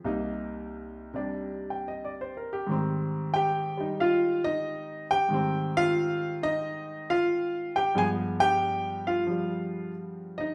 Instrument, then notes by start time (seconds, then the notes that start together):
grand piano
0.04 C2 C3 A#3 D#4
1.14 C3 G3 D4
1.70 G5
1.88 D#5
2.05 D5
2.21 C5
2.37 A#4
2.53 G4
2.67 G#2 D#3 G3
2.71 C4
3.34 G4 G5
3.77 G3 D#4
4.00 F4 F5
4.44 D#4 D#5
5.11 G4 G5
5.29 G#2 D#3 G3
5.34 C4
5.77 F4 F5
6.43 D#4 D#5
7.10 F4 F5
7.76 G4 G5
7.95 G2 F3 G#3 B3 G#4 G#5
8.40 G4 G5
9.07 F4 F5
9.27 F3 G3
10.38 D#4 D#5